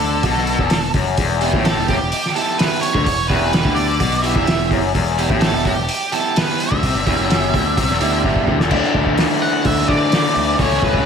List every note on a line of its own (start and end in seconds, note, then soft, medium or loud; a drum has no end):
0.00 0.21 D2 medium
0.00 0.24 D3 medium
0.00 0.90 A4 medium
0.00 open hi-hat soft
0.23 0.56 B1 medium
0.23 0.59 B2 medium
0.23 kick loud
0.23 open hi-hat medium
0.37 snare soft
0.47 open hi-hat soft
0.59 0.70 E1 medium
0.59 0.71 E2 medium
0.59 kick medium
0.70 0.93 E1 medium
0.70 0.90 E2 medium
0.70 snare medium
0.70 open hi-hat medium
0.94 1.16 F#1 medium
0.94 1.18 F#2 medium
0.94 kick medium
0.94 open hi-hat soft
1.18 1.50 E1 medium
1.18 1.53 E2 medium
1.18 kick medium
1.18 open hi-hat medium
1.41 1.63 E3 medium
1.41 1.64 B3 medium
1.41 1.64 E4 medium
1.41 1.65 G4 medium
1.41 open hi-hat soft
1.53 1.75 A1 medium
1.53 1.77 A2 medium
1.53 kick loud
1.65 1.95 E3 medium
1.65 1.96 B3 medium
1.65 1.96 E4 medium
1.65 1.96 G4 medium
1.65 1.88 A4 medium
1.65 snare medium
1.65 open hi-hat medium
1.78 1.88 E1 medium
1.78 1.89 E2 medium
1.88 1.99 F#1 medium
1.88 2.00 F#2 medium
1.88 2.32 G4 medium
1.88 kick medium
1.88 open hi-hat soft
2.01 2.12 E1 medium
2.01 2.12 E2 medium
2.12 open hi-hat medium
2.25 snare soft
2.35 2.57 E3 medium
2.35 2.58 B3 medium
2.35 2.58 E4 medium
2.35 2.58 G4 medium
2.35 2.57 A4 medium
2.35 open hi-hat soft
2.58 2.89 E3 medium
2.58 2.89 B3 medium
2.58 2.90 E4 medium
2.58 2.90 G4 medium
2.58 2.81 B4 medium
2.58 snare medium
2.58 open hi-hat medium
2.81 3.03 C#5 medium
2.81 open hi-hat soft
2.95 3.05 D2 medium
2.95 3.06 D3 medium
2.95 kick medium
3.04 3.28 E1 medium
3.04 3.26 E2 medium
3.04 3.27 C#5 medium
3.04 kick medium
3.04 open hi-hat medium
3.28 3.52 E1 medium
3.28 3.53 E2 medium
3.28 3.52 E3 medium
3.28 3.52 B3 medium
3.28 3.53 E4 medium
3.28 3.53 G4 medium
3.28 3.73 B4 medium
3.28 kick medium
3.28 open hi-hat soft
3.53 3.64 E1 medium
3.53 3.66 E2 medium
3.53 3.84 E3 medium
3.53 3.84 B3 medium
3.53 3.84 E4 medium
3.53 3.84 G4 medium
3.53 snare medium
3.53 open hi-hat medium
3.65 3.98 D2 medium
3.65 4.00 D3 medium
3.65 kick medium
3.75 4.24 D5 medium
3.75 open hi-hat soft
4.00 4.33 B1 medium
4.00 4.35 B2 loud
4.00 kick medium
4.00 open hi-hat medium
4.22 4.46 E3 medium
4.22 4.46 B3 medium
4.22 4.47 E4 medium
4.22 4.47 G4 medium
4.22 4.67 E5 medium
4.22 open hi-hat soft
4.35 4.46 E1 medium
4.35 4.47 E2 medium
4.35 kick medium
4.47 4.69 E1 medium
4.47 4.67 E2 medium
4.47 4.78 E3 medium
4.47 4.78 B3 medium
4.47 4.78 E4 medium
4.47 4.78 G4 medium
4.47 snare medium
4.47 open hi-hat medium
4.71 4.93 F#1 medium
4.71 4.94 F#2 medium
4.71 kick medium
4.71 open hi-hat soft
4.94 5.27 E1 medium
4.94 5.29 E2 medium
4.94 kick medium
4.94 open hi-hat medium
5.18 5.41 E3 medium
5.18 5.41 B3 medium
5.18 5.42 E4 medium
5.18 5.42 G4 medium
5.18 open hi-hat soft
5.30 5.52 A1 medium
5.30 5.53 A2 medium
5.30 kick medium
5.41 5.72 E3 medium
5.41 5.73 B3 medium
5.41 5.73 E4 medium
5.41 5.73 G4 medium
5.41 5.65 A4 medium
5.41 snare loud
5.41 open hi-hat medium
5.53 5.64 E1 medium
5.53 5.65 E2 medium
5.65 5.76 F#1 medium
5.65 5.76 F#2 medium
5.65 6.13 G4 medium
5.65 kick medium
5.65 open hi-hat soft
5.77 5.88 E1 medium
5.77 5.89 E2 medium
5.89 open hi-hat medium
6.12 6.35 E3 medium
6.12 6.35 B3 medium
6.12 6.36 E4 medium
6.12 6.36 G4 medium
6.12 6.37 A4 medium
6.12 open hi-hat soft
6.36 6.66 E3 medium
6.36 6.67 B3 medium
6.36 6.67 E4 medium
6.36 6.67 G4 medium
6.36 6.59 B4 medium
6.36 snare loud
6.36 open hi-hat medium
6.60 8.21 E5 medium
6.60 open hi-hat soft
6.72 6.82 D2 medium
6.72 6.82 D3 medium
6.72 kick medium
6.83 6.94 C2 medium
6.83 6.94 C3 medium
6.83 kick medium
6.83 open hi-hat medium
6.95 7.06 G1 medium
6.95 7.06 G2 medium
7.06 7.17 E1 medium
7.06 7.18 E2 loud
7.06 7.30 E3 medium
7.06 7.30 B3 medium
7.06 7.30 E4 medium
7.06 7.30 G4 medium
7.06 kick loud
7.06 open hi-hat soft
7.19 7.51 F#1 medium
7.19 7.53 F#2 medium
7.30 7.61 E3 medium
7.30 7.61 B3 medium
7.30 7.61 E4 medium
7.30 7.61 G4 medium
7.30 snare medium
7.30 open hi-hat medium
7.54 7.75 D2 medium
7.54 7.77 D3 medium
7.54 kick medium
7.54 open hi-hat soft
7.77 7.88 C2 medium
7.77 7.88 C3 medium
7.77 kick medium
7.77 open hi-hat medium
7.89 8.00 E1 medium
7.89 8.00 E2 medium
7.89 snare soft
8.01 8.23 D2 medium
8.01 8.23 D3 medium
8.01 8.23 E3 medium
8.01 8.23 B3 medium
8.01 8.24 E4 medium
8.01 8.24 G4 medium
8.01 open hi-hat soft
8.24 8.46 G1 medium
8.24 8.47 G2 medium
8.24 8.55 E3 medium
8.24 8.55 B3 medium
8.24 8.55 E4 medium
8.24 8.55 G4 medium
8.24 kick medium
8.36 kick medium
8.47 8.59 D2 medium
8.47 8.59 D3 medium
8.47 kick medium
8.59 8.71 E1 medium
8.59 8.70 E2 medium
8.59 snare medium
8.70 8.80 D2 medium
8.70 10.57 D3 medium
8.70 9.87 D3 medium
8.70 10.58 E3 medium
8.70 9.88 E3 medium
8.70 10.61 A3 medium
8.70 9.90 A3 medium
8.70 9.87 D4 medium
8.70 10.59 D4 medium
8.70 kick medium
8.70 crash medium
8.84 snare soft
8.94 9.04 D2 medium
8.94 kick medium
9.06 9.25 D2 medium
9.06 kick medium
9.18 snare medium
9.18 open hi-hat soft
9.42 9.64 F#5 medium
9.65 9.84 D2 medium
9.65 9.90 E5 loud
9.65 kick loud
9.65 open hi-hat medium
9.88 10.26 D3 medium
9.88 10.11 E3 medium
9.88 10.13 A3 medium
9.88 10.11 D4 medium
9.88 10.55 D5 medium
9.88 kick medium
9.92 10.10 D3 medium
10.11 10.57 D3 medium
10.11 10.58 E3 medium
10.11 10.60 A3 medium
10.11 10.59 D4 medium
10.11 snare medium
10.11 open hi-hat medium
10.36 10.55 D2 medium
10.58 10.78 C#2 medium
10.58 11.06 C#3 medium
10.58 11.06 E3 medium
10.58 11.06 A3 medium
10.58 11.06 C#4 medium
10.58 10.84 C#5 medium
10.58 kick medium
10.58 open hi-hat soft
10.62 11.06 C#4 medium
10.72 snare soft
10.82 10.92 C#2 medium
10.82 11.06 B4 medium
10.82 kick medium
10.94 11.06 C#2 medium
10.94 kick medium